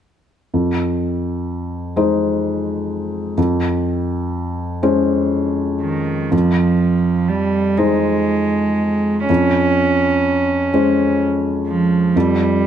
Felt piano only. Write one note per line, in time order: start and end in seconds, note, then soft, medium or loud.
0.54 1.92 F2 soft
1.96 3.33 G#3 soft
1.96 3.33 D#4 soft
1.96 3.34 C5 soft
3.38 4.78 F2 soft
4.83 6.29 G#3 soft
4.83 6.29 C#4 soft
4.83 6.29 C5 soft
6.31 7.73 F2 soft
7.78 9.25 G#3 soft
7.78 9.25 D#4 soft
7.78 9.25 C5 soft
9.29 10.69 F2 soft
10.73 12.11 G#3 soft
10.73 12.11 C#4 soft
10.73 12.12 C5 soft
12.16 12.67 F2 soft